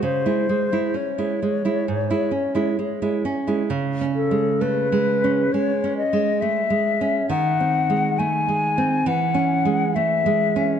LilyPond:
<<
  \new Staff \with { instrumentName = "Flute" } { \time 4/4 \key cis \minor \tempo 4 = 67 bis'4 cis''2~ cis''8 r8 | r8 a'8 b'4 cis''8 dis''8 e''4 | fis''4 gis''4 fis''4 e''4 | }
  \new Staff \with { instrumentName = "Nylon-string guitar" } { \clef bass \time 4/4 \key cis \minor cis16 <gis e'>16 gis16 <gis e'>16 cis'16 <gis e'>16 gis16 <gis e'>16 gis,16 <gis e'>16 cis'16 <gis e'>16 gis16 <gis e'>16 cis'16 <gis e'>16 | \tuplet 3/2 { cis8 cis'8 gis8 a8 gis8 cis'8 gis8 cis'8 gis8 a8 gis8 cis'8 } | \tuplet 3/2 { dis8 bis8 gis8 a8 gis8 bis8 e8 cis'8 gis8 a8 gis8 cis'8 } | }
>>